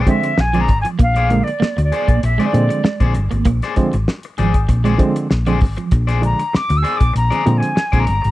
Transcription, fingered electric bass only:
0.39 0.69 A#1 loud
0.69 0.83 G#1 medium
1.00 1.40 A#1 loud
1.61 muted fingered electric bass stroke soft
1.78 1.90 D2 medium
2.09 2.21 A#1 medium
2.23 2.37 A#1 medium
2.54 2.68 A#2 loud
3.01 3.13 A#1 medium
3.16 3.30 G1 loud
3.32 3.44 G#1 medium
3.45 3.60 A#1 loud
3.94 4.06 G#1 medium
4.39 4.65 G#1 loud
4.69 4.95 A#1 medium
5.32 5.62 A#1 medium
5.62 5.76 G#1 loud
5.92 6.33 A#1 loud
6.55 muted fingered electric bass stroke medium
6.70 6.83 D2 medium
7.01 7.14 A#1 loud
7.15 7.30 A#1 medium
7.47 7.61 A#2 loud
7.93 8.06 A#1 medium
8.08 8.22 G1 medium
8.25 8.31 G#1 medium

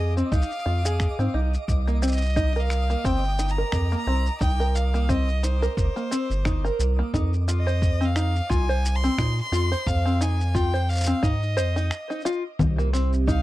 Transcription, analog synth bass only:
0.00 0.23 F2 loud
0.32 0.44 C2 medium
0.66 1.08 F2 medium
1.19 1.29 G#2 medium
1.34 1.57 C2 medium
1.68 2.96 C2 loud
3.04 3.64 G1 medium
3.73 3.96 F2 medium
4.07 4.30 C2 medium
4.41 5.68 C2 loud
5.77 5.89 G1 medium
6.30 6.70 G1 medium
6.79 7.02 C2 loud
7.14 8.41 F2 loud
8.50 9.09 C2 medium
9.18 9.41 A#2 medium
9.52 9.75 F2 medium
9.87 11.14 F2 medium
11.23 11.58 G#2 medium
11.56 11.91 F2 medium
12.59 13.42 C2 loud

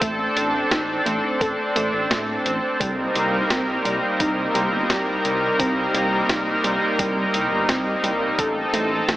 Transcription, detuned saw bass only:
0.02 0.28 A1 loud
0.37 0.63 A1 medium
0.71 0.98 A1 loud
1.06 1.19 A1 loud
1.41 1.54 A1 medium
1.76 1.89 A1 medium
1.93 2.07 A1 loud
2.11 2.37 A2 medium
2.46 2.59 A1 medium
2.81 3.07 C2 loud
3.15 3.42 C2 medium
3.50 3.77 C2 medium
3.85 3.98 C2 loud
4.20 4.46 C2 loud
4.55 4.68 C2 loud
4.72 4.86 G1 medium
4.90 5.16 C2 medium
5.25 5.51 C2 medium
5.60 5.86 C2 loud
5.94 6.21 C2 medium
6.29 6.56 C2 medium
6.64 6.77 C2 loud
6.99 7.26 C2 loud
7.34 7.47 C2 loud
7.52 7.65 G1 medium
7.69 7.95 C2 medium
8.04 8.30 C2 medium
8.39 8.65 A1 loud
8.74 9.00 A1 medium
9.09 9.17 A1 medium

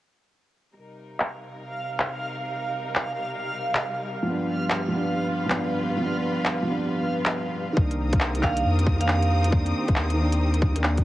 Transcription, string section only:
0.76 4.23 C3 medium
0.76 7.73 G3 medium
0.76 4.23 D#4 medium
0.76 4.23 A#4 medium
4.27 7.74 G2 medium
4.27 7.73 F4 medium
4.27 7.73 B4 medium
7.76 11.04 C4 medium
7.76 11.04 G4 medium
7.76 11.04 A#4 medium
7.76 11.04 D#6 medium

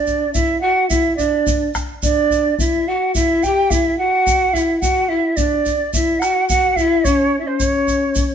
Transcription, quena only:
0.00 0.31 D5 medium
0.34 0.60 E5 loud
0.61 0.88 F#5 loud
0.89 1.16 E5 medium
1.17 1.70 D5 medium
2.03 2.55 D5 medium
2.59 2.90 E5 medium
2.88 3.14 F#5 medium
3.15 3.45 E5 loud
3.43 3.72 G5 loud
3.70 3.98 E5 loud
3.98 4.55 F#5 loud
4.54 4.80 E5 medium
4.80 5.10 F#5 medium
5.09 5.38 E5 medium
5.36 5.93 D5 medium
5.94 6.21 E5 medium
6.20 6.48 F#5 loud
6.49 6.78 F#5 loud
6.76 7.06 E5 medium
7.04 7.39 C#5 medium
7.39 7.49 E5 medium
7.47 7.63 C5 medium
7.63 8.35 C#5 medium

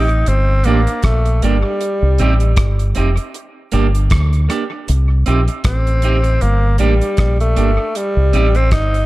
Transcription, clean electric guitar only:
0.66 0.79 A#3 loud
0.66 0.80 D4 loud
0.66 0.80 G4 medium
1.43 1.56 A#3 medium
1.43 1.57 D4 medium
1.43 1.57 G4 medium
1.65 muted clean electric guitar stroke soft
2.19 2.33 C4 medium
2.19 2.33 D#4 medium
2.19 2.34 G4 medium
2.42 muted clean electric guitar stroke soft
2.96 3.09 C4 medium
2.96 3.10 D#4 medium
2.96 3.10 G4 medium
3.72 3.86 A#3 medium
3.72 3.86 D4 medium
3.72 3.87 G4 medium
4.49 4.62 A#3 medium
4.49 4.63 D4 medium
4.49 4.63 G4 medium
4.72 muted clean electric guitar stroke soft
5.26 5.40 C4 medium
5.26 5.40 D#4 medium
5.26 5.40 G4 medium
5.49 muted clean electric guitar stroke soft
6.03 6.17 C4 medium
6.03 6.17 D#4 medium
6.03 6.17 G4 medium
6.79 6.93 A#3 medium
6.79 6.93 D4 medium
6.79 6.94 G4 medium
7.56 7.70 A#3 medium
7.56 7.70 D4 medium
7.56 7.71 G4 medium
7.78 muted clean electric guitar stroke medium
8.33 8.47 C4 medium
8.33 8.47 D#4 medium
8.33 8.48 G4 medium
8.56 muted clean electric guitar stroke medium

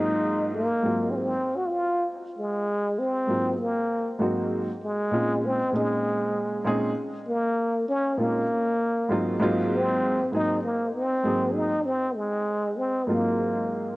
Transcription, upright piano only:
0.00 0.60 G#2 medium
0.00 0.61 F#3 medium
0.00 0.61 A#3 medium
0.00 0.61 C4 medium
0.00 0.61 D#4 medium
0.00 0.62 F4 medium
0.82 1.29 G#2 medium
0.82 1.29 F#3 soft
0.82 1.30 A#3 soft
0.82 1.30 C4 medium
0.82 1.30 D#4 soft
0.82 1.30 F4 medium
3.27 3.52 G#2 medium
3.27 3.52 F#3 soft
3.27 3.52 A#3 medium
3.27 3.53 C4 soft
3.27 3.53 D#4 soft
3.27 3.53 F4 medium
4.19 4.66 G#2 medium
4.19 4.66 F#3 medium
4.19 4.66 A#3 medium
4.19 4.67 C4 medium
4.19 4.67 D#4 medium
4.19 4.67 F#4 medium
5.11 5.58 A#2 medium
5.11 5.58 G#3 medium
5.11 5.58 C4 medium
5.11 5.58 C#4 medium
5.11 5.59 D#4 medium
5.11 5.59 F4 medium
5.72 6.60 A#2 medium
5.72 6.60 G#3 medium
5.72 6.61 C4 soft
5.72 6.61 C#4 medium
5.72 6.61 D#4 medium
5.72 6.62 G#4 medium
6.64 6.89 A#2 medium
6.64 6.89 G#3 medium
6.64 6.89 C4 medium
6.64 6.89 C#4 medium
6.64 6.90 D#4 medium
6.64 6.90 G#4 medium
8.17 8.42 A#2 medium
8.17 8.42 G#3 soft
8.17 8.42 C4 soft
8.17 8.42 C#4 medium
8.17 8.43 D#4 medium
8.17 8.43 F4 medium
9.09 9.33 G#2 medium
9.09 9.34 F#3 medium
9.09 9.34 A#3 medium
9.09 9.34 C4 medium
9.09 9.35 D#4 medium
9.09 9.35 F4 medium
9.40 10.17 G#2 medium
9.40 10.17 F#3 medium
9.40 10.18 A#3 medium
9.40 10.18 C4 medium
9.40 10.18 D#4 medium
9.40 10.18 F4 loud
10.32 10.56 G#2 medium
10.32 10.56 F#3 medium
10.32 10.57 A#3 medium
10.32 10.57 C4 medium
10.32 10.57 D#4 medium
10.32 10.58 G#4 medium
11.24 11.70 G#2 medium
11.24 11.70 F#3 medium
11.24 11.71 A#3 medium
11.24 11.71 C4 medium
11.24 11.71 D#4 medium
11.24 11.71 G#4 medium
13.07 13.95 G#2 medium
13.07 13.95 F#3 medium
13.07 13.96 A#3 medium
13.07 13.96 C4 medium
13.07 13.96 D#4 medium
13.07 13.96 F4 medium

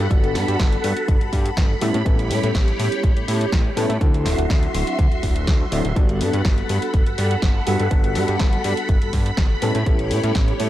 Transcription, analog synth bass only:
0.11 0.37 G1 loud
0.35 0.44 G2 medium
0.48 0.56 G2 medium
0.59 0.77 G1 loud
0.84 0.93 G2 medium
1.08 1.17 G1 loud
1.21 1.31 G2 soft
1.33 1.50 G2 loud
1.57 1.75 G1 medium
1.82 1.91 A2 medium
1.94 2.03 A2 medium
2.06 2.32 A1 loud
2.30 2.39 A2 medium
2.43 2.52 A2 medium
2.55 2.72 A1 loud
2.79 2.88 A2 medium
3.04 3.13 A1 loud
3.16 3.26 A2 soft
3.28 3.46 A2 loud
3.52 3.70 A1 medium
3.77 3.86 A2 medium
3.89 3.98 A2 medium
4.01 4.27 D2 loud
4.26 4.35 D1 medium
4.38 4.46 D1 medium
4.50 4.67 D2 loud
4.74 4.83 D1 medium
4.99 5.08 D2 loud
5.11 5.21 D1 soft
5.23 5.49 D1 medium
5.47 5.65 D2 loud
5.72 5.81 D1 loud
5.85 5.93 D1 medium
5.96 6.23 G1 loud
6.21 6.30 G2 medium
6.34 6.42 G2 medium
6.45 6.63 G1 loud
6.70 6.79 G2 medium
6.94 7.03 G1 loud
7.07 7.16 G2 soft
7.18 7.36 G2 loud
7.43 7.60 G1 medium
7.68 7.76 G2 medium
7.80 7.88 G2 medium
7.91 8.18 G1 loud
8.16 8.25 G2 medium
8.28 8.37 G2 medium
8.40 8.58 G1 loud
8.65 8.74 G2 medium
8.89 8.98 G1 loud
9.02 9.11 G2 soft
9.13 9.31 G2 loud
9.38 9.55 G1 medium
9.62 9.71 A2 medium
9.75 9.83 A2 medium
9.86 10.13 A1 loud
10.11 10.20 A2 medium
10.24 10.32 A2 medium
10.35 10.53 A1 medium
10.60 10.69 A2 medium

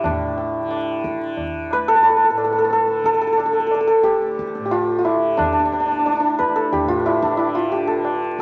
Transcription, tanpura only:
0.00 1.73 D2 medium
0.00 0.03 A2 medium
0.00 2.31 A2 medium
0.00 0.61 D3 medium
0.61 1.17 D3 medium
1.17 2.86 D3 medium
1.73 4.01 D2 medium
2.31 4.58 A2 medium
2.87 3.44 D3 medium
3.44 5.14 D3 medium
4.01 6.27 D2 medium
4.58 6.83 A2 medium
5.14 5.70 D3 medium
5.70 7.39 D3 medium
6.27 8.42 D2 medium
6.83 8.42 A2 medium
7.39 7.95 D3 medium
7.95 8.42 D3 medium

